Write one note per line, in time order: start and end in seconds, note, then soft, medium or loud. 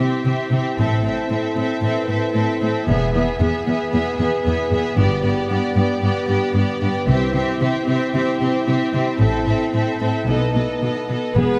0.00 0.81 C3 soft
0.00 0.81 G3 soft
0.00 0.25 C4 soft
0.00 2.88 C4 soft
0.00 0.51 C4 soft
0.00 0.25 E4 soft
0.00 2.84 E4 soft
0.00 0.24 G4 soft
0.00 0.24 E5 soft
0.25 0.33 C3 soft
0.25 0.50 C4 soft
0.25 1.30 E4 soft
0.25 0.52 G4 soft
0.25 0.52 E5 soft
0.52 0.60 C3 soft
0.52 0.77 C4 soft
0.52 1.03 C4 soft
0.52 0.79 G4 soft
0.52 0.78 E5 soft
0.78 1.03 A1 soft
0.78 2.90 A2 soft
0.78 0.87 A2 soft
0.78 1.04 C4 soft
0.78 1.04 A4 soft
0.78 1.04 E5 soft
1.04 1.12 A2 soft
1.04 1.56 C4 soft
1.04 1.30 C4 soft
1.04 1.31 A4 soft
1.04 1.31 E5 soft
1.30 1.38 A2 soft
1.30 1.55 C4 soft
1.30 2.34 E4 soft
1.30 1.57 A4 soft
1.30 1.57 E5 soft
1.55 1.64 A2 soft
1.55 1.81 C4 soft
1.55 2.07 C4 soft
1.55 1.83 A4 soft
1.55 1.83 E5 soft
1.82 1.90 A2 soft
1.82 2.90 E3 soft
1.82 2.08 C4 soft
1.82 2.09 A4 soft
1.82 2.07 E5 soft
2.08 2.16 A2 soft
2.08 2.60 C4 soft
2.08 2.33 C4 soft
2.08 2.32 A4 soft
2.08 2.33 E5 soft
2.34 2.42 A2 soft
2.34 2.60 C4 soft
2.34 3.39 E4 soft
2.34 2.60 A4 soft
2.34 2.61 E5 soft
2.61 2.69 A2 soft
2.61 2.90 C4 soft
2.61 2.87 C4 soft
2.61 2.88 A4 soft
2.61 2.87 E5 soft
2.87 3.12 E1 soft
2.87 5.00 E2 soft
2.87 2.96 E2 medium
2.87 3.13 B3 soft
2.87 6.90 B3 soft
2.87 4.98 G#4 medium
2.87 3.14 G#4 soft
2.87 3.13 E5 soft
3.14 3.22 E2 soft
3.14 3.66 B3 soft
3.14 3.39 B3 soft
3.14 3.40 G#4 soft
3.14 3.39 E5 soft
3.40 3.48 E2 medium
3.40 3.65 B3 soft
3.40 4.44 E4 soft
3.40 3.66 G#4 soft
3.40 3.66 E5 soft
3.66 3.75 E2 medium
3.66 3.91 B3 soft
3.66 4.18 B3 soft
3.66 3.92 G#4 soft
3.66 3.92 E5 soft
3.93 4.01 E2 soft
3.93 5.00 B2 soft
3.93 4.18 B3 medium
3.93 4.19 G#4 soft
3.93 4.17 E5 soft
4.19 4.28 E2 soft
4.19 4.44 B3 soft
4.19 4.71 B3 soft
4.19 4.43 G#4 soft
4.19 4.45 E5 soft
4.44 4.54 E2 medium
4.44 4.70 B3 soft
4.44 5.00 E4 soft
4.44 4.71 G#4 soft
4.44 4.72 E5 soft
4.71 4.79 E2 medium
4.71 4.96 B3 soft
4.71 5.24 B3 soft
4.71 4.98 G#4 soft
4.71 4.98 E5 soft
4.97 5.22 G1 medium
4.97 5.06 G2 medium
4.97 7.10 G2 medium
4.97 5.22 B3 medium
4.97 6.90 G4 medium
4.97 5.24 G4 medium
4.97 5.22 D5 medium
5.23 5.31 G2 medium
5.23 5.49 B3 soft
5.23 5.76 B3 soft
5.23 5.50 G4 soft
5.23 5.49 D5 soft
5.50 5.58 G2 medium
5.50 5.75 B3 soft
5.50 6.55 D4 soft
5.50 5.75 G4 soft
5.50 5.75 D5 soft
5.76 5.84 G2 medium
5.76 6.01 B3 soft
5.76 6.28 B3 soft
5.76 6.02 G4 soft
5.76 6.02 D5 soft
6.02 6.10 G2 medium
6.02 7.11 D3 soft
6.02 6.28 B3 medium
6.02 6.27 G4 medium
6.02 6.27 D5 medium
6.28 6.36 G2 medium
6.28 6.54 B3 soft
6.28 6.81 B3 soft
6.28 6.54 G4 soft
6.28 6.54 D5 medium
6.55 6.63 G2 medium
6.55 6.80 B3 medium
6.55 7.10 D4 soft
6.55 6.80 G4 medium
6.55 6.81 D5 medium
6.81 6.89 G2 medium
6.81 7.07 B3 soft
6.81 7.10 B3 soft
6.81 7.07 G4 medium
6.81 7.08 D5 soft
7.07 7.32 C2 medium
7.07 7.16 C3 medium
7.07 9.22 C3 medium
7.07 7.33 C4 medium
7.07 10.24 C4 medium
7.07 10.23 E4 medium
7.07 7.33 G4 medium
7.07 7.34 E5 medium
7.34 7.42 C3 medium
7.34 7.60 C4 soft
7.34 7.86 C4 soft
7.34 7.60 G4 medium
7.34 7.59 E5 medium
7.60 7.68 C3 medium
7.60 7.86 C4 medium
7.60 8.66 E4 soft
7.60 7.86 G4 soft
7.60 7.87 E5 medium
7.87 7.95 C3 medium
7.87 8.40 C4 soft
7.87 8.13 C4 soft
7.87 8.13 G4 soft
7.87 8.12 E5 medium
8.13 8.22 C3 medium
8.13 9.22 G3 soft
8.13 8.39 C4 medium
8.13 8.41 G4 soft
8.13 8.39 E5 medium
8.40 8.49 C3 soft
8.40 8.66 C4 soft
8.40 8.93 C4 soft
8.40 8.67 G4 soft
8.40 8.64 E5 soft
8.65 8.75 C3 medium
8.65 8.92 C4 soft
8.65 9.72 E4 soft
8.65 8.93 G4 soft
8.65 8.92 E5 soft
8.93 9.01 C3 medium
8.93 9.18 C4 soft
8.93 9.46 C4 soft
8.93 9.19 G4 soft
8.93 9.19 E5 soft
9.19 9.45 A1 medium
9.19 9.27 A2 medium
9.19 10.30 A2 soft
9.19 9.45 C4 soft
9.19 9.44 A4 soft
9.19 9.44 E5 soft
9.45 9.54 A2 soft
9.45 9.72 C4 soft
9.45 10.00 C4 soft
9.45 9.72 A4 soft
9.45 9.72 E5 soft
9.73 9.81 A2 soft
9.73 10.00 C4 soft
9.73 10.30 E4 soft
9.73 9.99 A4 soft
9.73 9.99 E5 soft
10.00 10.08 A2 soft
10.00 10.27 C4 soft
10.00 10.27 A4 soft
10.00 10.27 E5 soft
10.26 10.53 B1 soft
10.26 10.36 B2 soft
10.26 11.40 B2 soft
10.26 11.09 A3 soft
10.26 10.54 B3 soft
10.26 11.09 D#4 soft
10.26 10.53 A4 soft
10.26 10.55 D#5 soft
10.54 10.63 B2 soft
10.54 10.81 B3 soft
10.54 11.10 B3 soft
10.54 10.81 A4 soft
10.54 10.82 D#5 soft
10.82 10.90 B2 soft
10.82 11.09 B3 soft
10.82 11.40 D#4 soft
10.82 11.07 A4 soft
10.82 11.09 D#5 soft
11.09 11.17 B2 soft
11.09 11.35 B3 soft
11.09 11.36 A4 soft
11.09 11.37 D#5 soft
11.36 11.44 E1 medium
11.36 11.44 E2 medium
11.36 11.59 E2 soft
11.36 11.59 E3 medium
11.36 11.59 G#3 medium
11.36 11.59 B3 medium
11.36 11.59 G#4 medium
11.36 11.59 B4 medium
11.56 11.59 B2 soft